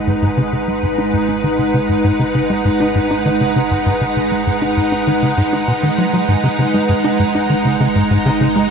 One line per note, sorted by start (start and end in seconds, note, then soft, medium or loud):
0.00 6.26 G#1 medium
0.00 8.70 G#3 medium
0.00 8.70 D#4 medium
0.00 7.29 B4 medium
0.00 8.70 F#5 medium
0.00 8.70 A#5 medium
0.07 0.15 G#2 medium
0.22 0.30 G#2 loud
0.37 0.42 C#3 loud
0.53 0.61 C#3 medium
0.68 0.80 G#3 medium
0.83 0.88 G#2 medium
0.98 1.06 D#4 loud
1.14 1.18 G#2 medium
1.29 1.36 D#4 medium
1.44 1.49 D#3 medium
1.59 1.71 C#3 medium
1.74 1.82 C#3 loud
1.89 1.97 G#2 medium
2.04 2.12 G#2 loud
2.20 2.24 C#3 medium
2.35 2.42 C#3 medium
2.50 2.61 G#3 medium
2.65 2.70 G#2 medium
2.80 2.88 D#4 loud
2.96 3.00 G#2 medium
3.11 3.18 D#4 medium
3.26 3.30 D#3 medium
3.41 3.52 C#3 medium
3.56 3.64 C#3 loud
3.71 3.79 G#2 medium
3.86 3.94 G#2 loud
4.01 4.06 C#3 medium
4.17 4.24 C#3 medium
4.32 4.43 G#3 medium
4.47 4.52 G#2 medium
4.62 4.70 D#4 loud
4.77 4.82 G#2 medium
4.92 5.00 D#4 medium
5.07 5.12 D#3 medium
5.23 5.34 C#3 medium
5.38 5.42 G#2 loud
5.53 5.61 D#4 medium
5.68 5.73 B2 medium
5.83 5.91 D#3 medium
5.98 6.06 F#3 medium
6.13 6.25 F#3 medium
6.29 8.70 G#1 medium
6.29 6.36 G#2 loud
6.44 6.48 C#3 loud
6.59 6.67 C#3 medium
6.74 6.86 G#3 medium
6.89 6.94 G#2 medium
7.04 7.12 D#4 medium
7.20 7.24 G#2 medium
7.26 8.70 D#5 medium
7.35 7.43 D#4 medium
7.50 7.55 D#3 medium
7.65 7.77 C#3 medium
7.80 7.88 C#3 loud
7.96 8.03 G#2 medium
8.11 8.18 G#2 loud
8.26 8.30 C#3 loud
8.41 8.49 C#3 medium
8.56 8.67 G#3 medium